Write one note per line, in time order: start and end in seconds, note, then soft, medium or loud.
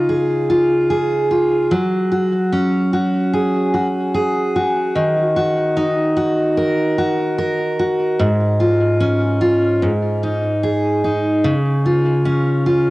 0.00 1.71 C#3 medium
0.00 1.79 D#4 medium
0.00 0.49 F4 medium
0.09 0.90 G#4 soft
0.50 1.30 F4 medium
0.90 2.15 G#4 medium
1.31 1.79 F4 medium
1.71 5.21 F#3 medium
2.12 2.93 F#4 soft
2.52 5.04 C#4 medium
2.93 3.73 F#4 medium
3.34 4.13 G#4 medium
3.74 4.55 F#4 soft
4.14 5.04 G#4 medium
4.56 5.36 F#4 medium
4.95 8.20 D#3 medium
5.36 6.15 F#4 medium
5.77 8.28 D#4 medium
6.17 6.97 F#4 medium
6.57 7.37 A#4 medium
6.98 7.78 F#4 medium
7.38 8.28 A#4 medium
7.79 8.28 F#4 medium
8.20 9.81 G#2 medium
8.60 9.40 F4 medium
9.00 9.90 C#4 medium
9.41 9.90 F4 medium
9.82 11.52 G#2 medium
10.23 11.03 D#4 soft
10.63 12.90 G#4 medium
11.04 11.52 D#4 medium
11.44 12.90 C#3 medium
11.85 12.65 F4 soft
12.25 12.90 C#4 medium
12.66 12.90 F4 medium